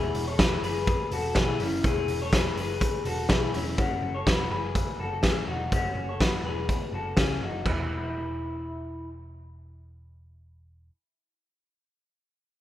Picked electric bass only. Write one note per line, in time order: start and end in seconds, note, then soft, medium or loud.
0.00 0.11 E1 medium
0.14 0.56 E1 medium
0.63 0.94 F#1 medium
1.11 1.32 E1 medium
1.36 1.56 B1 medium
1.60 1.80 F#1 medium
1.84 2.05 E1 medium
2.08 2.50 E1 medium
2.57 2.88 F#1 medium
3.05 3.26 E1 medium
3.30 3.50 B1 medium
3.54 3.75 E1 medium
3.78 3.99 F#1 medium
4.02 4.23 F#1 medium
4.26 4.47 E1 medium
4.51 4.81 F#1 medium
4.99 5.23 F#1 medium
5.23 5.44 A1 medium
5.47 5.68 E1 medium
5.72 5.93 F#1 medium
5.95 6.37 F#1 medium
6.44 6.75 E1 medium
6.92 7.13 F#1 medium
7.17 7.38 C#2 medium
7.41 7.62 F#1 medium
7.65 10.89 E1 medium